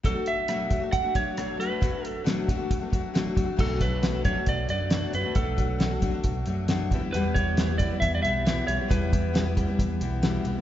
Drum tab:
CC |--------|--------|x-------|--------|
HH |xxxxxxxx|xxxxxxxx|-xxxxxxx|xxxxxxxx|
SD |--r---r-|--o---o-|--o---o-|--o---o-|
BD |o--ooo--|o--ooo-o|oo-oo---|oo-oo--o|

CC |--------|--------|
HH |xxxxxxxx|xxxxxxxx|
SD |--o---o-|--o---o-|
BD |-o-oo---|oo-oo---|